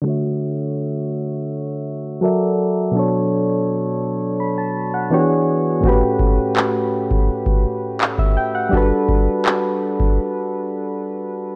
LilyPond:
<<
  \new Staff \with { instrumentName = "Synth keys" } { \time 4/4 \key d \major \tempo 4 = 83 << { r1 | r2 b''16 a''8 fis''8 r8. | r2. r16 e''16 g''16 fis''16~ | fis''16 r2. r8. | } \\ { <d a fis' cis'' e''>2. <fis fis' a' ais' d'' e''>4 | <b, fis d' a' cis''>2. <e b d' fis' g' gis' cis''>4 | <a, a c' cis' fis' g' b'>2~ <a, a c' cis' fis' g' b'>8 r4. | <g d' fis' a' b'>1 | } >> }
  \new DrumStaff \with { instrumentName = "Drums" } \drummode { \time 4/4 r4 r4 r4 r4 | r4 r4 r4 r4 | bd8 bd8 hc8. bd16 r16 bd8. hc16 bd8. | bd8 bd8 hc8. bd16 r4 r4 | }
>>